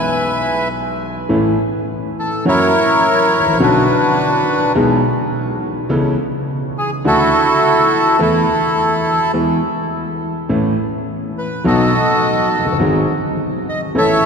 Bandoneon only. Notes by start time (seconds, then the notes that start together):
Already playing: B4 E5 G#5
2.19 A4
2.48 E4 A#4 C#5
3.63 D4 F#4 B4
6.78 G#4
7.07 E4 F#4 A4
8.22 E4 A4
11.38 B4
11.67 F#4 A4 D#5
12.54 D#5
13.69 D#5
13.98 A4 C#5 E5